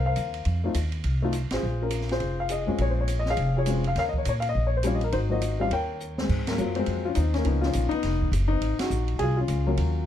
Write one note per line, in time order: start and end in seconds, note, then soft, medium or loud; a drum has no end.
0.00 0.15 C2 medium
0.06 0.44 A#4 medium
0.06 0.90 C5 medium
0.06 0.89 F5 medium
0.16 0.44 D#2 medium
0.16 hi-hat pedal medium
0.16 ride medium
0.34 ride soft
0.45 0.73 F2 medium
0.45 ride medium
0.64 0.74 A3 medium
0.64 0.75 C4 medium
0.64 0.75 D#4 medium
0.64 0.75 F4 medium
0.74 1.02 D#2 medium
0.74 hi-hat pedal medium
0.74 ride medium
0.92 ride soft
1.04 1.48 C2 medium
1.04 ride medium
1.22 1.32 A3 medium
1.22 1.33 C4 medium
1.22 1.33 D#4 medium
1.22 1.34 F4 medium
1.33 hi-hat pedal medium
1.33 ride medium
1.51 1.62 A1 medium
1.51 1.80 F4 medium
1.51 2.07 G#4 medium
1.51 1.82 C5 medium
1.51 snare medium
1.51 ride medium
1.63 2.18 A#1 medium
1.82 2.36 C#4 soft
1.82 2.10 F4 medium
1.82 2.12 A#4 medium
1.90 hi-hat pedal medium
1.90 ride medium
2.01 snare soft
2.09 2.65 F4 medium
2.09 2.48 G#4 medium
2.09 2.38 C5 medium
2.09 snare soft
2.09 ride soft
2.20 2.64 F1 medium
2.20 ride soft
2.40 2.51 F5 medium
2.49 2.80 G#4 medium
2.49 2.81 D#5 medium
2.49 hi-hat pedal medium
2.49 ride medium
2.67 2.78 F2 medium
2.67 3.05 G#3 medium
2.67 3.06 C4 medium
2.67 3.06 C#4 medium
2.67 2.80 F4 medium
2.78 3.34 A#1 medium
2.78 3.34 F4 medium
2.78 3.29 G#4 medium
2.78 2.90 C#5 medium
2.78 ride medium
2.90 3.00 C5 medium
3.01 3.20 C#5 medium
3.08 hi-hat pedal medium
3.08 ride medium
3.19 3.29 D#5 medium
3.26 snare soft
3.30 3.55 G#4 medium
3.30 3.57 C#5 medium
3.30 3.57 F5 medium
3.37 3.93 F1 medium
3.37 ride medium
3.57 3.67 F4 medium
3.57 3.94 G#4 medium
3.57 3.84 C#5 medium
3.66 3.82 G#3 medium
3.66 3.83 C4 medium
3.66 3.83 C#4 medium
3.66 3.84 F4 medium
3.66 hi-hat pedal medium
3.66 ride medium
3.84 3.97 F5 medium
3.84 ride soft
3.96 4.23 D#2 medium
3.96 4.51 A#4 medium
3.96 4.17 C#5 medium
3.96 4.03 F5 loud
3.96 snare soft
3.96 ride medium
4.09 4.12 D#5 medium
4.14 kick medium
4.18 4.27 C#5 medium
4.25 4.52 A#2 medium
4.25 4.32 C#5 medium
4.25 hi-hat pedal soft
4.25 ride medium
4.40 4.47 F5 medium
4.40 ride medium
4.49 4.65 D#5 medium
4.55 5.10 A#1 medium
4.67 4.75 C#5 medium
4.77 4.84 C5 medium
4.83 5.00 G3 medium
4.83 5.00 C4 medium
4.83 5.00 C#4 medium
4.83 5.01 F4 medium
4.83 4.94 C#5 medium
4.83 hi-hat pedal medium
4.83 ride medium
4.95 5.03 D#5 medium
5.01 5.13 A#4 medium
5.01 ride soft
5.12 5.68 G#1 medium
5.12 5.67 D#4 medium
5.12 5.29 F#4 medium
5.12 5.18 C5 medium
5.12 ride medium
5.30 5.40 F#3 medium
5.30 5.40 A#3 medium
5.30 5.41 C4 soft
5.30 5.41 F4 medium
5.30 5.68 F#4 medium
5.30 5.68 C5 medium
5.30 5.61 D#5 medium
5.42 hi-hat pedal medium
5.42 ride medium
5.60 5.70 G3 medium
5.60 5.70 C4 medium
5.60 5.70 C#4 medium
5.60 5.70 F4 medium
5.60 5.72 F5 medium
5.70 6.26 D#2 medium
5.70 6.26 A#4 medium
5.70 6.26 C#5 medium
5.70 6.16 G5 medium
5.70 ride medium
6.00 hi-hat pedal soft
6.18 6.47 G#3 medium
6.18 6.45 C4 medium
6.18 snare medium
6.29 6.57 G#2 medium
6.29 kick medium
6.29 crash medium
6.47 6.57 F#3 medium
6.47 6.58 A#3 medium
6.47 snare medium
6.47 ride medium
6.57 6.86 F#2 medium
6.57 7.01 F#3 medium
6.57 7.02 A#3 medium
6.57 6.75 C4 medium
6.57 7.03 F4 medium
6.57 hi-hat pedal medium
6.75 7.06 C4 medium
6.75 ride soft
6.79 7.05 G#3 medium
6.86 7.15 F2 medium
6.86 ride medium
7.05 7.17 C#4 medium
7.05 7.17 F4 medium
7.15 7.45 D#2 medium
7.15 7.34 C4 medium
7.15 7.32 D#4 medium
7.15 hi-hat pedal medium
7.15 ride medium
7.34 7.64 C#4 medium
7.34 snare soft
7.34 ride soft
7.38 7.43 A#3 medium
7.44 7.73 C#2 medium
7.44 7.88 F3 medium
7.44 7.88 A#3 medium
7.44 7.89 B3 medium
7.44 7.88 D#4 medium
7.44 ride medium
7.61 7.92 F4 medium
7.61 snare soft
7.66 7.92 C#4 medium
7.73 7.91 A#1 loud
7.73 hi-hat pedal medium
7.73 ride medium
7.89 8.30 B3 medium
7.89 8.28 D#4 loud
7.89 ride soft
7.93 muted upright bass stroke soft
8.03 8.31 F1 medium
8.03 snare soft
8.03 ride medium
8.21 kick soft
8.32 8.60 F#1 medium
8.32 hi-hat pedal medium
8.32 ride medium
8.48 8.76 D#4 loud
8.52 8.79 C4 medium
8.61 8.78 G#1 medium
8.61 ride medium
8.79 9.21 F#4 medium
8.79 muted upright bass stroke soft
8.79 snare medium
8.79 ride medium
8.83 9.19 D#4 medium
8.90 9.19 A#1 medium
8.90 hi-hat pedal soft
9.08 ride soft
9.19 9.48 C2 medium
9.19 9.36 G#4 loud
9.19 ride medium
9.23 9.35 F4 medium
9.37 9.67 C#4 medium
9.37 9.67 F4 medium
9.48 9.77 C#2 medium
9.48 hi-hat pedal soft
9.48 ride medium
9.67 10.05 F#3 medium
9.67 10.05 A#3 medium
9.67 10.06 C#4 medium
9.67 10.06 F4 medium
9.77 10.06 D#2 medium
9.77 ride medium